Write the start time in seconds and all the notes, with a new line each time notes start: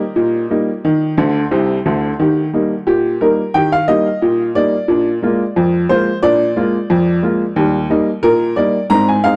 Already playing: G4 A#4 D#5
0.16 A#2
0.50 G3 A#3 D#4
0.85 D#3
1.18 D2 D3
1.51 C2 C3
1.86 D2 D3
2.20 D#3 G4
2.54 G3 A#3 D#4
2.87 A#2 G4
3.21 G3 A#3 D#4 A#4
3.54 D#3 G4 G5
3.72 F5
3.88 G3 A#3 D#4 D#5
4.22 A#2
4.55 G3 A#3 D#4 D5
4.88 A#2 D4
5.23 G#3 A#3 F4
5.56 F2
5.89 G#3 A#3 F4 C5
6.23 A#2 D4 D5
6.56 G#3 A#3 F4
6.90 F2
7.23 G#3 A#3 F4
7.56 D#2 G3
7.90 G3 A#3 D#4
8.23 A#2 A#4
8.56 G3 A#3 D#4 D5
8.90 G#2 C4 A#5
9.08 G#5
9.24 G#3 C4 D#4 F5